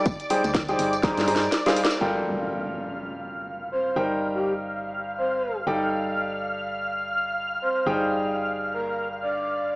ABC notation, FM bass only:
X:1
M:4/4
L:1/16
Q:"Swing 16ths" 1/4=123
K:Gm
V:1 name="FM bass" clef=bass
G,,, z2 D,,3 G,,,3 G,,3 z4 | G,,,16 | G,,,12- G,,,2 G,,,2- | G,,,12- G,,,2 z2 |
G,,,16 |]